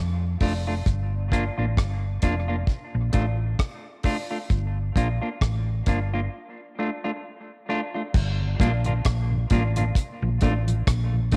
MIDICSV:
0, 0, Header, 1, 5, 480
1, 0, Start_track
1, 0, Key_signature, -2, "minor"
1, 0, Tempo, 909366
1, 456, Time_signature, 4, 2, 24, 8
1, 5998, End_track
2, 0, Start_track
2, 0, Title_t, "Clean electric guitar"
2, 0, Program_c, 0, 27
2, 218, Note_on_c, 0, 57, 69
2, 220, Note_on_c, 0, 62, 79
2, 225, Note_on_c, 0, 65, 77
2, 274, Note_off_c, 0, 57, 0
2, 275, Note_off_c, 0, 62, 0
2, 278, Note_off_c, 0, 65, 0
2, 355, Note_on_c, 0, 65, 55
2, 358, Note_on_c, 0, 62, 52
2, 361, Note_on_c, 0, 57, 45
2, 388, Note_off_c, 0, 65, 0
2, 389, Note_off_c, 0, 62, 0
2, 391, Note_off_c, 0, 57, 0
2, 697, Note_on_c, 0, 58, 85
2, 701, Note_on_c, 0, 62, 77
2, 703, Note_on_c, 0, 65, 92
2, 753, Note_off_c, 0, 58, 0
2, 755, Note_off_c, 0, 62, 0
2, 757, Note_off_c, 0, 65, 0
2, 832, Note_on_c, 0, 65, 59
2, 838, Note_on_c, 0, 62, 55
2, 840, Note_on_c, 0, 58, 51
2, 866, Note_off_c, 0, 65, 0
2, 870, Note_off_c, 0, 58, 0
2, 870, Note_off_c, 0, 62, 0
2, 1176, Note_on_c, 0, 58, 78
2, 1178, Note_on_c, 0, 62, 97
2, 1182, Note_on_c, 0, 65, 85
2, 1233, Note_off_c, 0, 58, 0
2, 1234, Note_off_c, 0, 62, 0
2, 1236, Note_off_c, 0, 65, 0
2, 1310, Note_on_c, 0, 65, 59
2, 1315, Note_on_c, 0, 62, 50
2, 1316, Note_on_c, 0, 58, 50
2, 1345, Note_off_c, 0, 65, 0
2, 1348, Note_off_c, 0, 58, 0
2, 1348, Note_off_c, 0, 62, 0
2, 1650, Note_on_c, 0, 57, 72
2, 1655, Note_on_c, 0, 62, 72
2, 1657, Note_on_c, 0, 65, 79
2, 1710, Note_off_c, 0, 57, 0
2, 1713, Note_off_c, 0, 62, 0
2, 1714, Note_off_c, 0, 65, 0
2, 2132, Note_on_c, 0, 57, 73
2, 2139, Note_on_c, 0, 62, 87
2, 2141, Note_on_c, 0, 65, 86
2, 2191, Note_off_c, 0, 57, 0
2, 2195, Note_off_c, 0, 62, 0
2, 2196, Note_off_c, 0, 65, 0
2, 2273, Note_on_c, 0, 65, 59
2, 2275, Note_on_c, 0, 62, 51
2, 2277, Note_on_c, 0, 57, 43
2, 2307, Note_off_c, 0, 65, 0
2, 2308, Note_off_c, 0, 62, 0
2, 2309, Note_off_c, 0, 57, 0
2, 2619, Note_on_c, 0, 58, 81
2, 2622, Note_on_c, 0, 62, 85
2, 2625, Note_on_c, 0, 65, 84
2, 2675, Note_off_c, 0, 58, 0
2, 2677, Note_off_c, 0, 62, 0
2, 2678, Note_off_c, 0, 65, 0
2, 2753, Note_on_c, 0, 65, 60
2, 2756, Note_on_c, 0, 62, 52
2, 2758, Note_on_c, 0, 58, 47
2, 2787, Note_off_c, 0, 65, 0
2, 2789, Note_off_c, 0, 62, 0
2, 2790, Note_off_c, 0, 58, 0
2, 3099, Note_on_c, 0, 58, 74
2, 3105, Note_on_c, 0, 62, 83
2, 3107, Note_on_c, 0, 65, 83
2, 3155, Note_off_c, 0, 58, 0
2, 3158, Note_off_c, 0, 62, 0
2, 3159, Note_off_c, 0, 65, 0
2, 3239, Note_on_c, 0, 62, 59
2, 3239, Note_on_c, 0, 65, 67
2, 3245, Note_on_c, 0, 58, 46
2, 3270, Note_off_c, 0, 62, 0
2, 3270, Note_off_c, 0, 65, 0
2, 3273, Note_off_c, 0, 58, 0
2, 3583, Note_on_c, 0, 57, 75
2, 3585, Note_on_c, 0, 62, 76
2, 3588, Note_on_c, 0, 65, 79
2, 3637, Note_off_c, 0, 57, 0
2, 3638, Note_off_c, 0, 62, 0
2, 3640, Note_off_c, 0, 65, 0
2, 3718, Note_on_c, 0, 65, 71
2, 3720, Note_on_c, 0, 62, 63
2, 3723, Note_on_c, 0, 57, 55
2, 3750, Note_off_c, 0, 65, 0
2, 3751, Note_off_c, 0, 62, 0
2, 3752, Note_off_c, 0, 57, 0
2, 4059, Note_on_c, 0, 57, 81
2, 4061, Note_on_c, 0, 62, 88
2, 4063, Note_on_c, 0, 65, 94
2, 4115, Note_off_c, 0, 57, 0
2, 4116, Note_off_c, 0, 62, 0
2, 4117, Note_off_c, 0, 65, 0
2, 4193, Note_on_c, 0, 65, 55
2, 4197, Note_on_c, 0, 62, 49
2, 4202, Note_on_c, 0, 57, 41
2, 4227, Note_off_c, 0, 65, 0
2, 4229, Note_off_c, 0, 62, 0
2, 4232, Note_off_c, 0, 57, 0
2, 4541, Note_on_c, 0, 58, 92
2, 4543, Note_on_c, 0, 62, 91
2, 4547, Note_on_c, 0, 65, 97
2, 4596, Note_off_c, 0, 58, 0
2, 4597, Note_off_c, 0, 62, 0
2, 4599, Note_off_c, 0, 65, 0
2, 4677, Note_on_c, 0, 65, 69
2, 4682, Note_on_c, 0, 62, 52
2, 4684, Note_on_c, 0, 58, 50
2, 4709, Note_off_c, 0, 65, 0
2, 4712, Note_off_c, 0, 62, 0
2, 4713, Note_off_c, 0, 58, 0
2, 5021, Note_on_c, 0, 58, 91
2, 5023, Note_on_c, 0, 62, 83
2, 5028, Note_on_c, 0, 65, 90
2, 5076, Note_off_c, 0, 58, 0
2, 5077, Note_off_c, 0, 62, 0
2, 5080, Note_off_c, 0, 65, 0
2, 5155, Note_on_c, 0, 65, 66
2, 5160, Note_on_c, 0, 62, 57
2, 5162, Note_on_c, 0, 58, 53
2, 5189, Note_off_c, 0, 65, 0
2, 5191, Note_off_c, 0, 62, 0
2, 5192, Note_off_c, 0, 58, 0
2, 5501, Note_on_c, 0, 57, 74
2, 5504, Note_on_c, 0, 62, 82
2, 5507, Note_on_c, 0, 65, 78
2, 5556, Note_off_c, 0, 57, 0
2, 5558, Note_off_c, 0, 62, 0
2, 5559, Note_off_c, 0, 65, 0
2, 5977, Note_on_c, 0, 57, 94
2, 5998, Note_off_c, 0, 57, 0
2, 5998, End_track
3, 0, Start_track
3, 0, Title_t, "Tonewheel organ"
3, 0, Program_c, 1, 16
3, 4435, Note_on_c, 1, 50, 57
3, 4436, Note_on_c, 1, 43, 55
3, 4472, Note_off_c, 1, 43, 0
3, 4472, Note_off_c, 1, 50, 0
3, 4540, Note_on_c, 1, 55, 74
3, 4541, Note_on_c, 1, 58, 76
3, 4542, Note_on_c, 1, 65, 89
3, 4587, Note_off_c, 1, 55, 0
3, 4588, Note_off_c, 1, 58, 0
3, 4588, Note_off_c, 1, 65, 0
3, 4674, Note_on_c, 1, 43, 64
3, 4674, Note_on_c, 1, 50, 59
3, 4711, Note_off_c, 1, 43, 0
3, 4711, Note_off_c, 1, 50, 0
3, 4914, Note_on_c, 1, 50, 61
3, 4915, Note_on_c, 1, 43, 58
3, 4951, Note_off_c, 1, 43, 0
3, 4951, Note_off_c, 1, 50, 0
3, 5018, Note_on_c, 1, 55, 71
3, 5020, Note_on_c, 1, 58, 70
3, 5021, Note_on_c, 1, 65, 72
3, 5066, Note_off_c, 1, 55, 0
3, 5067, Note_off_c, 1, 58, 0
3, 5068, Note_off_c, 1, 65, 0
3, 5154, Note_on_c, 1, 50, 59
3, 5156, Note_on_c, 1, 43, 57
3, 5191, Note_off_c, 1, 50, 0
3, 5192, Note_off_c, 1, 43, 0
3, 5396, Note_on_c, 1, 53, 56
3, 5397, Note_on_c, 1, 46, 58
3, 5432, Note_off_c, 1, 53, 0
3, 5433, Note_off_c, 1, 46, 0
3, 5497, Note_on_c, 1, 57, 83
3, 5499, Note_on_c, 1, 58, 69
3, 5500, Note_on_c, 1, 62, 88
3, 5546, Note_off_c, 1, 57, 0
3, 5547, Note_off_c, 1, 58, 0
3, 5547, Note_off_c, 1, 62, 0
3, 5633, Note_on_c, 1, 46, 59
3, 5633, Note_on_c, 1, 53, 54
3, 5670, Note_off_c, 1, 46, 0
3, 5670, Note_off_c, 1, 53, 0
3, 5874, Note_on_c, 1, 53, 56
3, 5876, Note_on_c, 1, 46, 58
3, 5911, Note_off_c, 1, 53, 0
3, 5912, Note_off_c, 1, 46, 0
3, 5978, Note_on_c, 1, 57, 71
3, 5980, Note_on_c, 1, 58, 72
3, 5981, Note_on_c, 1, 62, 88
3, 5998, Note_off_c, 1, 57, 0
3, 5998, Note_off_c, 1, 58, 0
3, 5998, Note_off_c, 1, 62, 0
3, 5998, End_track
4, 0, Start_track
4, 0, Title_t, "Fingered electric bass"
4, 0, Program_c, 2, 33
4, 0, Note_on_c, 2, 41, 81
4, 186, Note_off_c, 2, 41, 0
4, 217, Note_on_c, 2, 29, 91
4, 425, Note_off_c, 2, 29, 0
4, 457, Note_on_c, 2, 31, 100
4, 782, Note_off_c, 2, 31, 0
4, 835, Note_on_c, 2, 33, 77
4, 925, Note_off_c, 2, 33, 0
4, 937, Note_on_c, 2, 31, 82
4, 1146, Note_off_c, 2, 31, 0
4, 1178, Note_on_c, 2, 29, 89
4, 1386, Note_off_c, 2, 29, 0
4, 1555, Note_on_c, 2, 34, 90
4, 1645, Note_off_c, 2, 34, 0
4, 1659, Note_on_c, 2, 33, 87
4, 1866, Note_off_c, 2, 33, 0
4, 2377, Note_on_c, 2, 31, 99
4, 2586, Note_off_c, 2, 31, 0
4, 2619, Note_on_c, 2, 34, 80
4, 2735, Note_off_c, 2, 34, 0
4, 2858, Note_on_c, 2, 33, 77
4, 3066, Note_off_c, 2, 33, 0
4, 3100, Note_on_c, 2, 31, 82
4, 3307, Note_off_c, 2, 31, 0
4, 4300, Note_on_c, 2, 31, 112
4, 4508, Note_off_c, 2, 31, 0
4, 4540, Note_on_c, 2, 34, 86
4, 4748, Note_off_c, 2, 34, 0
4, 4780, Note_on_c, 2, 34, 92
4, 4988, Note_off_c, 2, 34, 0
4, 5020, Note_on_c, 2, 33, 85
4, 5228, Note_off_c, 2, 33, 0
4, 5397, Note_on_c, 2, 34, 101
4, 5486, Note_off_c, 2, 34, 0
4, 5503, Note_on_c, 2, 33, 98
4, 5710, Note_off_c, 2, 33, 0
4, 5739, Note_on_c, 2, 34, 88
4, 5998, Note_off_c, 2, 34, 0
4, 5998, End_track
5, 0, Start_track
5, 0, Title_t, "Drums"
5, 214, Note_on_c, 9, 46, 74
5, 215, Note_on_c, 9, 36, 93
5, 267, Note_off_c, 9, 46, 0
5, 268, Note_off_c, 9, 36, 0
5, 455, Note_on_c, 9, 36, 109
5, 455, Note_on_c, 9, 44, 61
5, 508, Note_off_c, 9, 36, 0
5, 508, Note_off_c, 9, 44, 0
5, 696, Note_on_c, 9, 36, 85
5, 703, Note_on_c, 9, 42, 73
5, 749, Note_off_c, 9, 36, 0
5, 756, Note_off_c, 9, 42, 0
5, 936, Note_on_c, 9, 36, 108
5, 942, Note_on_c, 9, 37, 88
5, 989, Note_off_c, 9, 36, 0
5, 994, Note_off_c, 9, 37, 0
5, 1172, Note_on_c, 9, 42, 76
5, 1176, Note_on_c, 9, 36, 96
5, 1224, Note_off_c, 9, 42, 0
5, 1229, Note_off_c, 9, 36, 0
5, 1410, Note_on_c, 9, 36, 100
5, 1463, Note_off_c, 9, 36, 0
5, 1651, Note_on_c, 9, 42, 65
5, 1657, Note_on_c, 9, 36, 79
5, 1704, Note_off_c, 9, 42, 0
5, 1710, Note_off_c, 9, 36, 0
5, 1896, Note_on_c, 9, 36, 103
5, 1898, Note_on_c, 9, 37, 98
5, 1948, Note_off_c, 9, 36, 0
5, 1951, Note_off_c, 9, 37, 0
5, 2129, Note_on_c, 9, 46, 74
5, 2134, Note_on_c, 9, 36, 90
5, 2182, Note_off_c, 9, 46, 0
5, 2186, Note_off_c, 9, 36, 0
5, 2374, Note_on_c, 9, 44, 62
5, 2375, Note_on_c, 9, 36, 95
5, 2426, Note_off_c, 9, 44, 0
5, 2428, Note_off_c, 9, 36, 0
5, 2616, Note_on_c, 9, 36, 83
5, 2623, Note_on_c, 9, 42, 70
5, 2669, Note_off_c, 9, 36, 0
5, 2675, Note_off_c, 9, 42, 0
5, 2857, Note_on_c, 9, 36, 98
5, 2860, Note_on_c, 9, 37, 89
5, 2910, Note_off_c, 9, 36, 0
5, 2913, Note_off_c, 9, 37, 0
5, 3094, Note_on_c, 9, 42, 75
5, 3098, Note_on_c, 9, 36, 94
5, 3147, Note_off_c, 9, 42, 0
5, 3150, Note_off_c, 9, 36, 0
5, 4297, Note_on_c, 9, 49, 90
5, 4298, Note_on_c, 9, 36, 122
5, 4350, Note_off_c, 9, 49, 0
5, 4351, Note_off_c, 9, 36, 0
5, 4538, Note_on_c, 9, 36, 98
5, 4544, Note_on_c, 9, 42, 74
5, 4591, Note_off_c, 9, 36, 0
5, 4597, Note_off_c, 9, 42, 0
5, 4669, Note_on_c, 9, 42, 45
5, 4722, Note_off_c, 9, 42, 0
5, 4776, Note_on_c, 9, 42, 79
5, 4779, Note_on_c, 9, 36, 101
5, 4782, Note_on_c, 9, 37, 107
5, 4828, Note_off_c, 9, 42, 0
5, 4832, Note_off_c, 9, 36, 0
5, 4835, Note_off_c, 9, 37, 0
5, 5014, Note_on_c, 9, 42, 80
5, 5018, Note_on_c, 9, 36, 103
5, 5067, Note_off_c, 9, 42, 0
5, 5071, Note_off_c, 9, 36, 0
5, 5152, Note_on_c, 9, 42, 60
5, 5205, Note_off_c, 9, 42, 0
5, 5253, Note_on_c, 9, 36, 106
5, 5258, Note_on_c, 9, 42, 85
5, 5306, Note_off_c, 9, 36, 0
5, 5311, Note_off_c, 9, 42, 0
5, 5494, Note_on_c, 9, 42, 71
5, 5501, Note_on_c, 9, 36, 81
5, 5546, Note_off_c, 9, 42, 0
5, 5554, Note_off_c, 9, 36, 0
5, 5637, Note_on_c, 9, 42, 52
5, 5690, Note_off_c, 9, 42, 0
5, 5739, Note_on_c, 9, 36, 119
5, 5741, Note_on_c, 9, 37, 107
5, 5742, Note_on_c, 9, 42, 106
5, 5792, Note_off_c, 9, 36, 0
5, 5794, Note_off_c, 9, 37, 0
5, 5794, Note_off_c, 9, 42, 0
5, 5973, Note_on_c, 9, 46, 83
5, 5977, Note_on_c, 9, 36, 92
5, 5998, Note_off_c, 9, 36, 0
5, 5998, Note_off_c, 9, 46, 0
5, 5998, End_track
0, 0, End_of_file